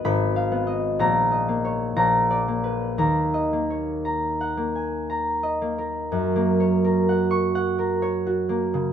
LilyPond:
<<
  \new Staff \with { instrumentName = "Harp" } { \time 3/4 \key ees \minor \tempo 4 = 62 << { ces'''4 bes''4 bes''4 | bes''2.~ | \key fis \major bes''4~ bes''16 cis'''4.~ cis'''16 | } \\ { \tuplet 3/2 { <ces'' aes''>8 f''8 ees''8~ ees''8 ees''8 des''8~ des''8 d''8 ces''8~ } | \tuplet 3/2 { ces''8 ees''8 des''8 bes''8 ges''8 aes''8 bes''8 ees''8 bes'8~ } | bes'2. | } >> }
  \new Staff \with { instrumentName = "Harp" } { \time 3/4 \key ees \minor <aes,, ces'>8 ces'8 bes,,8 bes8 bes,,8 bes8 | ees,8 bes4 bes4 bes8 | \key fis \major fis,16 ais16 cis''16 ais'16 fis''8 fis''16 ais'16 cis''16 fis'16 ais16 cis16 | }
>>